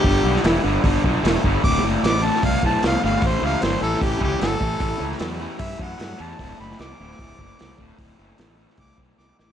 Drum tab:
HH |o---o---o---o---|o---o---o---o---|o---o---o---o---|o---o---o---o---|
SD |---oo-------o---|----o--o----o---|----o--o----o---|---oo-------o---|
BD |o-------o-o---o-|o-------o-o-----|o-------o-o---o-|o-------o-o-----|

HH |o---o---o---o---|o---o---o-------|
SD |---oo--o----o---|----o--o----o-o-|
BD |o-------o-o---o-|o-------o-o-----|